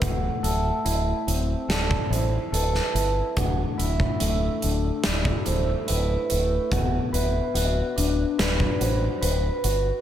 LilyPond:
<<
  \new Staff \with { instrumentName = "Vibraphone" } { \time 4/4 \key d \mixolydian \tempo 4 = 72 fis''8 e''4 r8 d''8 c''8 b'4 | fis''8 e''4 r8 d''8 c''8 b'4 | fis''8 e''4 r8 d''8 c''8 b'4 | }
  \new Staff \with { instrumentName = "Clean electric guitar" } { \time 4/4 \key d \mixolydian a,8 a'8 e'8 c'8 a'8 e'8 a'8 e'8 | d,8 e'8 a8 d8 e'8 a8 e'8 a8 | b,8 b'8 fis'8 d'8 b'8 fis'8 b'8 fis'8 | }
  \new Staff \with { instrumentName = "Fingered electric bass" } { \clef bass \time 4/4 \key d \mixolydian d,,8 d,,8 d,,8 d,,8 d,,8 a,,8 d,,8 g,,8 | d,,8 d,,8 d,,8 d,,8 d,,8 d,,8 d,,8 d,,8 | d,,8 d,,8 d,,8 d,,8 d,,8 a,,8 d,,8 g,,8 | }
  \new DrumStaff \with { instrumentName = "Drums" } \drummode { \time 4/4 <hh bd>8 hh8 hh8 hh8 <hh sn>16 bd16 hh8 hh16 sn16 hh8 | <hh bd>8 hh16 bd16 hh8 hh8 <hh sn>16 bd16 hh8 hh8 hh8 | <hh bd>8 hh8 hh8 hh8 <hh sn>16 bd16 hh8 hh8 hh8 | }
>>